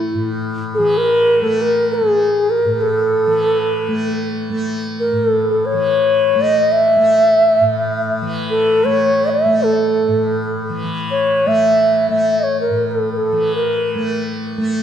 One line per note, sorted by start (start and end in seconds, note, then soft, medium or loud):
0.00 0.14 A2 soft
0.00 0.79 E3 soft
0.00 1.41 A3 soft
0.00 0.29 E4 medium
0.14 2.65 A2 medium
0.74 0.99 G#4 medium
0.74 0.79 A4 medium
0.79 3.26 E3 medium
0.98 1.40 A#4 medium
1.40 2.02 A3 medium
1.40 1.63 A4 medium
1.40 1.45 A#4 medium
1.61 1.95 A#4 medium
1.94 2.52 G#4 medium
2.02 3.88 A3 soft
2.50 2.82 A#4 medium
2.65 5.12 A2 medium
2.81 4.32 A4 medium
3.27 5.73 E3 soft
3.88 4.50 A3 soft
4.50 6.35 A3 soft
5.00 5.27 A#4 medium
5.12 7.60 A2 soft
5.27 5.51 A4 medium
5.51 5.67 A4 medium
5.66 6.43 C#5 medium
5.73 8.21 E3 medium
6.35 6.96 A3 medium
6.42 6.73 D#5 loud
6.72 8.12 E5 loud
6.96 8.84 A3 medium
7.61 10.08 A2 medium
8.22 10.69 E3 medium
8.50 8.86 A4 medium
8.84 9.45 A3 medium
8.84 9.31 C#5 medium
9.30 9.64 E5 medium
9.45 11.46 A3 medium
9.63 10.61 A4 medium
10.08 12.70 A2 medium
10.69 10.83 E3 medium
10.83 13.32 E3 soft
11.11 11.49 C#5 medium
11.46 12.09 A3 medium
11.46 12.09 E5 medium
12.09 13.95 A3 medium
12.09 12.41 E5 medium
12.40 12.60 C#5 medium
12.40 12.44 D#5 medium
12.61 12.92 A#4 medium
12.70 14.83 A2 medium
12.91 13.12 A4 medium
13.12 13.18 A#4 medium
13.17 13.53 A4 medium
13.32 14.83 E3 medium
13.56 14.26 A#4 medium
13.95 14.58 A3 medium
14.58 14.83 A3 medium